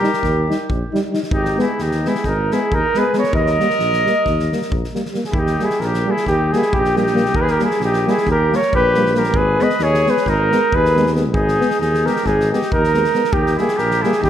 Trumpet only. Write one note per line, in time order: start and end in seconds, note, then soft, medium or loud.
0.00 0.68 G4 medium
1.34 1.57 D#4 medium
1.61 1.83 E4 medium
1.82 2.09 D#4 medium
2.08 2.26 E4 medium
2.25 2.54 D#4 medium
2.53 2.76 E4 medium
2.75 3.00 D#4 medium
2.99 3.16 G#4 medium
3.19 3.35 A#4 medium
3.36 4.94 A#4 loud
5.31 5.41 E4 medium
5.39 5.66 D#4 medium
5.65 5.87 E4 medium
5.86 6.13 G4 medium
6.11 6.29 E4 medium
6.31 6.59 D#4 medium
6.58 6.81 E4 medium
6.79 7.00 D#4 medium
7.03 7.42 D#4 medium
7.40 7.45 G4 medium
7.40 7.53 G#4 medium
7.52 7.63 G4 medium
7.65 7.82 E4 medium
7.84 8.11 D#4 medium
8.09 8.28 E4 medium
8.30 8.58 G4 medium
8.56 8.74 A#4 medium
8.74 9.15 G4 loud
9.15 9.37 G4 medium
9.35 9.62 G#4 medium
9.61 9.84 B4 medium
9.83 10.10 G#4 loud
10.10 10.30 G#4 medium
10.29 10.77 D#4 medium
10.76 11.13 G#4 medium
11.34 11.77 D#4 medium
11.80 12.08 D#4 medium
12.07 12.28 G4 medium
12.27 12.53 D#4 medium
12.53 12.71 D#4 medium
12.73 13.32 D#4 medium
13.32 13.55 D#4 medium
13.56 13.78 E4 medium
13.77 14.03 G4 medium
14.02 14.18 E4 medium
14.19 14.30 D#4 medium